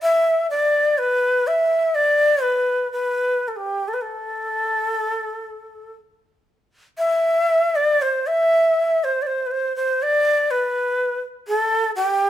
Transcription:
0.02 0.47 E5 medium
0.50 1.00 D5 medium
0.98 1.49 B4 medium
1.47 1.96 E5 medium
1.95 2.44 D5 medium
2.42 2.91 B4 medium
2.92 3.49 B4 medium
3.48 3.58 A4 soft
3.56 3.90 G4 medium
3.88 3.95 A4 medium
3.94 4.03 B4 medium
4.02 5.94 A4 medium
6.98 7.77 E5 medium
7.75 8.03 D5 medium
8.02 8.28 C5 medium
8.27 9.05 E5 medium
9.04 9.24 C5 medium
9.22 9.28 D5 medium
9.27 9.48 C5 medium
9.46 9.53 B4 medium
9.51 9.75 C5 medium
9.76 10.04 C5 medium
10.03 10.52 D5 medium
10.51 11.20 B4 medium
11.47 11.91 A4 medium
11.96 12.30 G4 medium

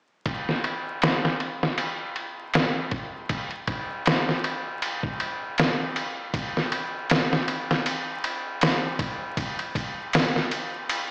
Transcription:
0.26 kick medium
0.26 ride medium
0.49 snare soft
0.64 ride medium
1.02 snare loud
1.02 ride medium
1.25 snare soft
1.40 ride medium
1.63 snare soft
1.78 ride medium
2.16 ride medium
2.54 snare loud
2.54 ride medium
2.91 kick medium
2.91 ride medium
3.29 kick medium
3.29 ride medium
3.51 ride soft
3.67 kick medium
3.67 ride medium
4.06 snare loud
4.06 ride medium
4.29 snare soft
4.44 ride medium
4.82 ride medium
5.03 kick medium
5.20 ride medium
5.58 snare loud
5.58 ride medium
5.96 ride medium
6.34 kick loud
6.34 ride medium
6.57 snare soft
6.72 ride medium
7.10 snare loud
7.10 ride medium
7.33 snare soft
7.48 ride medium
7.71 snare soft
7.86 ride medium
8.24 ride medium
8.61 snare loud
8.61 ride medium
8.99 kick medium
8.99 ride medium
9.37 kick loud
9.37 ride medium
9.59 ride soft
9.75 kick medium
9.75 ride medium
10.13 snare loud
10.13 ride medium
10.36 snare soft
10.51 ride medium
10.89 ride medium

